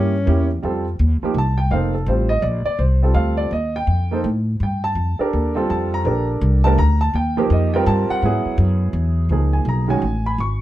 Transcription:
Already playing: G2 A#3 C#4 E4 G4
0.26 E2 A#3 C#4 E4 G4
0.62 F2 G3 C4 F4 A4
0.99 D#2
1.22 F3 A#3 D#4 G4, muted upright bass stroke
1.34 C2
1.38 A5
1.58 G5
1.71 F1 A#3 D#4 A4 C5 F5
1.95 A4
2.06 A1 G3 C4 F4 C5
2.29 D#5
2.42 A#1 D5
2.66 D5, muted upright bass stroke
2.79 C2 C5
3.02 G3 C4 F4 A4
3.14 D2 F5
3.37 D5
3.51 D#2 D#5
3.76 G5
3.87 F2
4.11 A#3 D#4 A4 C5
4.24 A2
4.60 G2 G5
4.84 A5
4.95 F2
5.19 D4 G4 A4 A#4, muted upright bass stroke
5.33 D#2
5.55 G3 C4 F4 A4
5.70 F2 A5
5.94 A#5
6.05 A#1 D4 G4 A4 A#4
6.41 C2
6.64 A3 D4 G4 A#4 A5
6.78 D2 A#5
7.01 A5
7.13 D#2 G5
7.37 F3 A#3 D#4 G4 A#4
7.50 F2 D#5
7.74 G3 C4 F4 A#4 G5
7.86 G2 A5
8.10 F#5, muted upright bass stroke
8.22 G#2 F#3 B3 E4 G#4
8.45 muted upright bass stroke
8.58 F#2
8.93 E2
9.29 C#2 F3 A#3 D#4 G#4
9.53 G#5
9.65 B1 A#5
9.88 D#3 G#3 C#4 F#4 G#5
10.02 A1
10.26 B5
10.38 G#1 C#6

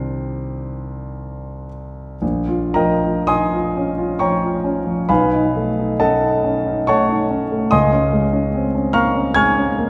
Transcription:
Already playing: C2 D#3 C4 D4 G4 C5 G5 C6
2.22 A#1
2.48 F4
2.74 F3 A#4 D#5 G5 A#5
3.04 F4
3.27 D#4 D#5 G#5 C6 D#6
3.53 F4
3.77 C#4
3.98 F4
4.19 F3 C#5 G5 A#5 C#6
4.43 F4
4.64 C#4
4.87 F3
5.09 B1 B4 F5 G#5 B5
5.33 D#4
5.57 A3
5.79 D#4
5.99 C#4 A4 D#5 F#5 A5
6.21 D#4
6.44 C#4
6.67 D#4
6.87 A3 C#5 F#5 A5 C#6
7.09 D#4
7.31 C#4
7.52 A3
7.71 C#2 D#5 G#5 C6 D#6
7.92 C#4
8.13 G#3
8.33 C#4
8.54 C4
8.75 C#4
8.93 A#3 F5 A#5 C#6 F6
9.14 C#4
9.34 G#3 G#5 C#6 F6 G#6
9.57 C#4
9.78 A#3

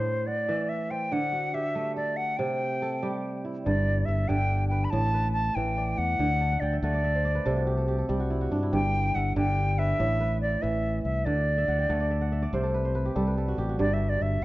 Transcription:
Already playing: A2 C5 D5
0.27 D5 F#5
0.48 E3 E5
0.69 E5
0.91 C5 G5
1.12 D3 F#5
1.32 F#4
1.54 G4 E5
1.75 A3
1.96 A4 D5
2.17 F#5
2.37 C3 G5
2.82 A4
3.03 G3 G4
3.45 E4
3.64 G1 G2 D5
4.05 G1 E5
4.28 G1 D3 G4 G5
4.68 B4 G5
4.84 B5
4.90 A1 A2 A5
5.14 B4
5.32 A5
5.55 A1 E3 G5
5.78 D5
5.98 E2 F#5
6.19 D2 D3
6.41 A5
6.52 F#5
6.60 D2 D5 G5
6.73 E5
6.81 D2 A3 D5 F#5
6.94 D5
7.04 E5
7.15 C5
7.25 D5
7.35 B4
7.46 C2 C3 A4
7.56 F#4
7.67 G4
7.77 A4
7.88 G4
7.98 A4
8.09 C2 G3 G4
8.20 F#4
8.30 E4
8.41 F#4
8.51 G2 D4
8.63 E4
8.73 G1 G2 G4 G5
9.15 G1 E5 F#5
9.36 G1 D3 G4 G5
9.79 B4 E5
9.99 A1 A2
10.20 B4
10.42 D5
10.62 A1 E3 E5
11.03 C2 E5
11.25 D2 D3 D5
11.58 E5
11.68 D2 F#5
11.79 G5
11.89 D2 A3 F#5
12.00 D5
12.10 E5
12.21 F#5
12.32 E5
12.42 D5
12.53 C2 C3 C5
12.63 A4
12.74 B4
12.85 C5
12.95 B4
13.06 G4
13.16 C2 G3 A4
13.27 B4
13.38 A4
13.48 F#4
13.58 A1 G4
13.69 F#4
13.79 G1 G2 G4 D5
13.93 E5
14.09 D5
14.21 G1 E5

